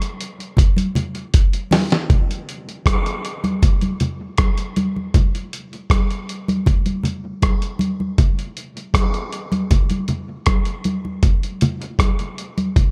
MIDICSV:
0, 0, Header, 1, 2, 480
1, 0, Start_track
1, 0, Tempo, 761421
1, 1320, Time_signature, 4, 2, 24, 8
1, 8140, End_track
2, 0, Start_track
2, 0, Title_t, "Drums"
2, 11, Note_on_c, 9, 42, 49
2, 74, Note_off_c, 9, 42, 0
2, 130, Note_on_c, 9, 42, 77
2, 193, Note_off_c, 9, 42, 0
2, 254, Note_on_c, 9, 42, 34
2, 317, Note_off_c, 9, 42, 0
2, 357, Note_on_c, 9, 64, 70
2, 368, Note_on_c, 9, 36, 117
2, 371, Note_on_c, 9, 42, 87
2, 420, Note_off_c, 9, 64, 0
2, 431, Note_off_c, 9, 36, 0
2, 434, Note_off_c, 9, 42, 0
2, 483, Note_on_c, 9, 63, 54
2, 491, Note_on_c, 9, 42, 53
2, 546, Note_off_c, 9, 63, 0
2, 554, Note_off_c, 9, 42, 0
2, 601, Note_on_c, 9, 64, 64
2, 607, Note_on_c, 9, 42, 70
2, 664, Note_off_c, 9, 64, 0
2, 670, Note_off_c, 9, 42, 0
2, 724, Note_on_c, 9, 42, 30
2, 787, Note_off_c, 9, 42, 0
2, 843, Note_on_c, 9, 42, 95
2, 845, Note_on_c, 9, 36, 117
2, 906, Note_off_c, 9, 42, 0
2, 908, Note_off_c, 9, 36, 0
2, 967, Note_on_c, 9, 42, 52
2, 1030, Note_off_c, 9, 42, 0
2, 1078, Note_on_c, 9, 63, 75
2, 1086, Note_on_c, 9, 46, 68
2, 1088, Note_on_c, 9, 38, 83
2, 1142, Note_off_c, 9, 63, 0
2, 1149, Note_off_c, 9, 46, 0
2, 1151, Note_off_c, 9, 38, 0
2, 1201, Note_on_c, 9, 42, 34
2, 1212, Note_on_c, 9, 38, 79
2, 1264, Note_off_c, 9, 42, 0
2, 1275, Note_off_c, 9, 38, 0
2, 1323, Note_on_c, 9, 36, 111
2, 1324, Note_on_c, 9, 42, 71
2, 1324, Note_on_c, 9, 64, 69
2, 1386, Note_off_c, 9, 36, 0
2, 1387, Note_off_c, 9, 42, 0
2, 1387, Note_off_c, 9, 64, 0
2, 1455, Note_on_c, 9, 42, 50
2, 1518, Note_off_c, 9, 42, 0
2, 1568, Note_on_c, 9, 42, 67
2, 1631, Note_off_c, 9, 42, 0
2, 1694, Note_on_c, 9, 42, 33
2, 1757, Note_off_c, 9, 42, 0
2, 1801, Note_on_c, 9, 36, 98
2, 1803, Note_on_c, 9, 63, 49
2, 1807, Note_on_c, 9, 37, 108
2, 1810, Note_on_c, 9, 42, 86
2, 1864, Note_off_c, 9, 36, 0
2, 1866, Note_off_c, 9, 63, 0
2, 1871, Note_off_c, 9, 37, 0
2, 1873, Note_off_c, 9, 42, 0
2, 1930, Note_on_c, 9, 42, 43
2, 1993, Note_off_c, 9, 42, 0
2, 2047, Note_on_c, 9, 42, 70
2, 2110, Note_off_c, 9, 42, 0
2, 2167, Note_on_c, 9, 63, 67
2, 2170, Note_on_c, 9, 42, 30
2, 2230, Note_off_c, 9, 63, 0
2, 2233, Note_off_c, 9, 42, 0
2, 2285, Note_on_c, 9, 64, 67
2, 2286, Note_on_c, 9, 36, 111
2, 2287, Note_on_c, 9, 42, 79
2, 2348, Note_off_c, 9, 64, 0
2, 2349, Note_off_c, 9, 36, 0
2, 2350, Note_off_c, 9, 42, 0
2, 2405, Note_on_c, 9, 42, 48
2, 2409, Note_on_c, 9, 63, 54
2, 2468, Note_off_c, 9, 42, 0
2, 2472, Note_off_c, 9, 63, 0
2, 2522, Note_on_c, 9, 42, 61
2, 2526, Note_on_c, 9, 64, 66
2, 2585, Note_off_c, 9, 42, 0
2, 2589, Note_off_c, 9, 64, 0
2, 2759, Note_on_c, 9, 42, 83
2, 2763, Note_on_c, 9, 37, 118
2, 2764, Note_on_c, 9, 36, 109
2, 2766, Note_on_c, 9, 63, 50
2, 2822, Note_off_c, 9, 42, 0
2, 2826, Note_off_c, 9, 37, 0
2, 2827, Note_off_c, 9, 36, 0
2, 2829, Note_off_c, 9, 63, 0
2, 2884, Note_on_c, 9, 42, 48
2, 2947, Note_off_c, 9, 42, 0
2, 3003, Note_on_c, 9, 42, 60
2, 3005, Note_on_c, 9, 63, 67
2, 3066, Note_off_c, 9, 42, 0
2, 3068, Note_off_c, 9, 63, 0
2, 3129, Note_on_c, 9, 63, 44
2, 3192, Note_off_c, 9, 63, 0
2, 3242, Note_on_c, 9, 36, 105
2, 3242, Note_on_c, 9, 42, 71
2, 3250, Note_on_c, 9, 64, 69
2, 3305, Note_off_c, 9, 36, 0
2, 3305, Note_off_c, 9, 42, 0
2, 3313, Note_off_c, 9, 64, 0
2, 3372, Note_on_c, 9, 42, 46
2, 3435, Note_off_c, 9, 42, 0
2, 3487, Note_on_c, 9, 42, 69
2, 3550, Note_off_c, 9, 42, 0
2, 3612, Note_on_c, 9, 42, 33
2, 3675, Note_off_c, 9, 42, 0
2, 3719, Note_on_c, 9, 36, 104
2, 3726, Note_on_c, 9, 37, 102
2, 3727, Note_on_c, 9, 63, 56
2, 3729, Note_on_c, 9, 42, 91
2, 3782, Note_off_c, 9, 36, 0
2, 3789, Note_off_c, 9, 37, 0
2, 3790, Note_off_c, 9, 63, 0
2, 3792, Note_off_c, 9, 42, 0
2, 3849, Note_on_c, 9, 42, 43
2, 3912, Note_off_c, 9, 42, 0
2, 3967, Note_on_c, 9, 42, 67
2, 4030, Note_off_c, 9, 42, 0
2, 4087, Note_on_c, 9, 63, 60
2, 4093, Note_on_c, 9, 42, 34
2, 4150, Note_off_c, 9, 63, 0
2, 4156, Note_off_c, 9, 42, 0
2, 4200, Note_on_c, 9, 64, 71
2, 4205, Note_on_c, 9, 36, 115
2, 4207, Note_on_c, 9, 42, 82
2, 4263, Note_off_c, 9, 64, 0
2, 4268, Note_off_c, 9, 36, 0
2, 4270, Note_off_c, 9, 42, 0
2, 4323, Note_on_c, 9, 42, 51
2, 4325, Note_on_c, 9, 63, 53
2, 4386, Note_off_c, 9, 42, 0
2, 4388, Note_off_c, 9, 63, 0
2, 4435, Note_on_c, 9, 64, 62
2, 4445, Note_on_c, 9, 42, 61
2, 4498, Note_off_c, 9, 64, 0
2, 4508, Note_off_c, 9, 42, 0
2, 4679, Note_on_c, 9, 63, 49
2, 4681, Note_on_c, 9, 42, 83
2, 4683, Note_on_c, 9, 36, 107
2, 4685, Note_on_c, 9, 37, 112
2, 4742, Note_off_c, 9, 63, 0
2, 4744, Note_off_c, 9, 42, 0
2, 4746, Note_off_c, 9, 36, 0
2, 4748, Note_off_c, 9, 37, 0
2, 4803, Note_on_c, 9, 42, 49
2, 4866, Note_off_c, 9, 42, 0
2, 4912, Note_on_c, 9, 63, 69
2, 4923, Note_on_c, 9, 42, 59
2, 4975, Note_off_c, 9, 63, 0
2, 4986, Note_off_c, 9, 42, 0
2, 5043, Note_on_c, 9, 63, 48
2, 5106, Note_off_c, 9, 63, 0
2, 5158, Note_on_c, 9, 42, 72
2, 5159, Note_on_c, 9, 36, 104
2, 5160, Note_on_c, 9, 64, 68
2, 5221, Note_off_c, 9, 42, 0
2, 5222, Note_off_c, 9, 36, 0
2, 5223, Note_off_c, 9, 64, 0
2, 5288, Note_on_c, 9, 42, 45
2, 5351, Note_off_c, 9, 42, 0
2, 5401, Note_on_c, 9, 42, 65
2, 5464, Note_off_c, 9, 42, 0
2, 5527, Note_on_c, 9, 42, 35
2, 5591, Note_off_c, 9, 42, 0
2, 5635, Note_on_c, 9, 36, 100
2, 5640, Note_on_c, 9, 37, 108
2, 5641, Note_on_c, 9, 63, 56
2, 5642, Note_on_c, 9, 42, 95
2, 5698, Note_off_c, 9, 36, 0
2, 5703, Note_off_c, 9, 37, 0
2, 5704, Note_off_c, 9, 63, 0
2, 5705, Note_off_c, 9, 42, 0
2, 5762, Note_on_c, 9, 42, 43
2, 5825, Note_off_c, 9, 42, 0
2, 5879, Note_on_c, 9, 42, 64
2, 5942, Note_off_c, 9, 42, 0
2, 5999, Note_on_c, 9, 63, 65
2, 6004, Note_on_c, 9, 42, 34
2, 6062, Note_off_c, 9, 63, 0
2, 6067, Note_off_c, 9, 42, 0
2, 6119, Note_on_c, 9, 64, 71
2, 6120, Note_on_c, 9, 42, 80
2, 6121, Note_on_c, 9, 36, 104
2, 6182, Note_off_c, 9, 64, 0
2, 6183, Note_off_c, 9, 42, 0
2, 6184, Note_off_c, 9, 36, 0
2, 6239, Note_on_c, 9, 42, 54
2, 6245, Note_on_c, 9, 63, 51
2, 6302, Note_off_c, 9, 42, 0
2, 6308, Note_off_c, 9, 63, 0
2, 6354, Note_on_c, 9, 42, 59
2, 6358, Note_on_c, 9, 64, 63
2, 6417, Note_off_c, 9, 42, 0
2, 6421, Note_off_c, 9, 64, 0
2, 6593, Note_on_c, 9, 42, 85
2, 6597, Note_on_c, 9, 37, 111
2, 6599, Note_on_c, 9, 36, 108
2, 6603, Note_on_c, 9, 63, 48
2, 6656, Note_off_c, 9, 42, 0
2, 6660, Note_off_c, 9, 37, 0
2, 6662, Note_off_c, 9, 36, 0
2, 6666, Note_off_c, 9, 63, 0
2, 6716, Note_on_c, 9, 42, 50
2, 6779, Note_off_c, 9, 42, 0
2, 6835, Note_on_c, 9, 42, 61
2, 6841, Note_on_c, 9, 63, 63
2, 6899, Note_off_c, 9, 42, 0
2, 6904, Note_off_c, 9, 63, 0
2, 6965, Note_on_c, 9, 63, 45
2, 7028, Note_off_c, 9, 63, 0
2, 7077, Note_on_c, 9, 42, 75
2, 7078, Note_on_c, 9, 36, 114
2, 7081, Note_on_c, 9, 64, 67
2, 7140, Note_off_c, 9, 42, 0
2, 7141, Note_off_c, 9, 36, 0
2, 7144, Note_off_c, 9, 64, 0
2, 7208, Note_on_c, 9, 42, 49
2, 7271, Note_off_c, 9, 42, 0
2, 7319, Note_on_c, 9, 42, 75
2, 7326, Note_on_c, 9, 64, 73
2, 7382, Note_off_c, 9, 42, 0
2, 7389, Note_off_c, 9, 64, 0
2, 7448, Note_on_c, 9, 42, 34
2, 7511, Note_off_c, 9, 42, 0
2, 7557, Note_on_c, 9, 36, 97
2, 7563, Note_on_c, 9, 37, 101
2, 7564, Note_on_c, 9, 63, 53
2, 7565, Note_on_c, 9, 42, 92
2, 7620, Note_off_c, 9, 36, 0
2, 7626, Note_off_c, 9, 37, 0
2, 7627, Note_off_c, 9, 63, 0
2, 7628, Note_off_c, 9, 42, 0
2, 7685, Note_on_c, 9, 42, 44
2, 7748, Note_off_c, 9, 42, 0
2, 7805, Note_on_c, 9, 42, 63
2, 7868, Note_off_c, 9, 42, 0
2, 7928, Note_on_c, 9, 42, 33
2, 7928, Note_on_c, 9, 63, 61
2, 7991, Note_off_c, 9, 42, 0
2, 7991, Note_off_c, 9, 63, 0
2, 8045, Note_on_c, 9, 36, 107
2, 8046, Note_on_c, 9, 64, 64
2, 8047, Note_on_c, 9, 42, 80
2, 8108, Note_off_c, 9, 36, 0
2, 8109, Note_off_c, 9, 64, 0
2, 8110, Note_off_c, 9, 42, 0
2, 8140, End_track
0, 0, End_of_file